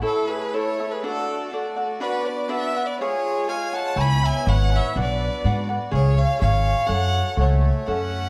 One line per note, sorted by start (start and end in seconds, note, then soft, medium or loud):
0.02 1.99 A3 medium
0.02 0.53 E4 medium
0.02 0.31 E4 medium
0.02 0.52 A4 medium
0.02 0.29 A4 loud
0.02 0.53 C#5 medium
0.02 1.03 C#5 medium
0.02 0.53 E5 medium
0.06 1.03 E4 medium
0.27 0.56 G#4 medium
0.27 0.55 B4 medium
0.54 0.79 E4 medium
0.54 0.79 A4 medium
0.54 0.95 A4 medium
0.54 0.92 C#5 loud
0.54 0.79 C#5 medium
0.54 0.79 E5 medium
0.80 1.03 A4 soft
0.80 1.04 C#5 soft
0.80 1.04 E5 soft
0.90 1.05 G#4 medium
0.90 1.03 B4 medium
1.03 1.50 D4 medium
1.03 2.97 F#4 medium
1.03 1.51 F#4 medium
1.03 1.52 A4 medium
1.03 1.49 A4 loud
1.03 1.52 D5 medium
1.03 2.00 D5 medium
1.03 1.52 F#5 medium
1.52 1.76 D4 medium
1.52 1.76 A4 medium
1.52 1.75 D5 medium
1.52 1.75 F#5 medium
1.76 2.00 A4 soft
1.76 2.00 D5 medium
1.76 2.00 F#5 soft
2.00 2.98 B3 medium
2.00 2.47 D4 medium
2.00 2.27 F#4 medium
2.00 2.28 B4 medium
2.00 2.48 B4 medium
2.00 2.98 D5 medium
2.00 2.49 D5 medium
2.00 2.49 F#5 medium
2.25 2.51 B4 medium
2.25 2.51 D5 medium
2.49 2.74 D4 medium
2.49 2.74 B4 medium
2.49 2.86 B4 medium
2.49 2.73 D5 medium
2.49 2.87 E5 loud
2.49 2.74 F#5 medium
2.75 3.00 B4 soft
2.75 2.99 D5 soft
2.75 3.00 F#5 soft
2.86 2.99 B4 medium
2.86 2.98 D5 medium
2.99 3.96 G#3 medium
2.99 3.96 F4 medium
2.99 3.47 G#4 medium
2.99 3.50 G#4 medium
2.99 3.51 C#5 loud
2.99 4.94 C#5 medium
2.99 3.47 C#5 loud
2.99 3.48 F5 medium
2.99 3.48 G#5 medium
3.48 3.73 G#4 medium
3.48 3.73 C#5 medium
3.48 3.76 F5 medium
3.48 3.72 F5 medium
3.48 3.72 G#5 medium
3.48 3.76 G#5 loud
3.73 3.95 C#5 soft
3.73 3.96 F5 soft
3.73 4.00 F#5 medium
3.73 3.95 G#5 medium
3.73 4.03 A5 loud
3.96 4.29 C#2 medium
3.96 4.95 B3 medium
3.96 4.95 E4 medium
3.96 4.46 C#5 medium
3.96 4.46 E5 medium
3.96 4.46 G#5 medium
3.96 4.25 G#5 loud
3.96 4.46 B5 medium
4.01 4.27 B5 loud
4.24 4.49 E5 medium
4.24 4.50 G#5 loud
4.47 4.79 G#1 loud
4.47 4.71 C#5 medium
4.47 4.72 C#5 medium
4.47 4.71 E5 medium
4.47 4.77 F#5 loud
4.47 4.71 G#5 medium
4.47 4.70 B5 medium
4.71 4.95 C#5 medium
4.71 4.96 E5 soft
4.71 4.96 G#5 soft
4.71 4.95 B5 soft
4.75 4.97 E5 loud
4.95 5.27 B1 medium
4.95 5.93 B3 medium
4.95 5.43 D4 medium
4.95 5.93 F#4 medium
4.95 5.65 B4 medium
4.95 5.44 B4 medium
4.95 5.45 D5 medium
4.95 5.93 D5 medium
4.95 5.44 F#5 medium
5.01 5.67 D5 loud
5.44 5.76 G#2 loud
5.44 5.69 D4 medium
5.44 5.69 B4 medium
5.44 5.68 D5 medium
5.44 5.67 F#5 medium
5.69 5.93 B4 medium
5.69 5.92 D5 medium
5.69 5.91 F#5 medium
5.91 6.24 C#2 loud
5.91 6.90 F4 medium
5.91 6.38 G#4 loud
5.91 6.17 G#4 medium
5.91 6.40 C#5 medium
5.91 6.19 C#5 loud
5.91 6.40 F5 medium
5.91 6.41 G#5 loud
5.96 6.90 C#5 medium
6.16 6.40 C#5 medium
6.16 6.39 F5 loud
6.39 6.73 G#1 loud
6.39 6.86 G#4 medium
6.39 6.86 C#5 medium
6.39 6.89 C#5 medium
6.39 6.88 F5 loud
6.39 6.87 F5 medium
6.39 6.87 G#5 medium
6.87 7.21 F#2 medium
6.87 7.86 F#4 medium
6.87 7.36 A4 medium
6.87 7.87 A4 medium
6.87 7.36 C#5 medium
6.87 7.39 C#5 loud
6.87 7.37 F#5 loud
6.87 7.38 F#5 medium
6.87 7.38 G#5 medium
7.37 7.70 C#2 medium
7.37 7.90 A3 medium
7.37 7.86 A4 medium
7.37 7.87 C#5 medium
7.37 7.88 C#5 medium
7.37 7.88 F#5 medium
7.37 7.88 G#5 medium
7.86 8.29 F#2 medium
7.86 8.29 A3 medium
7.86 8.29 C#4 medium
7.86 8.29 F#4 medium
7.86 8.29 A4 medium
7.86 8.29 C#5 medium
7.86 8.29 E5 medium
7.86 8.29 F#5 loud
7.86 8.29 F#5 medium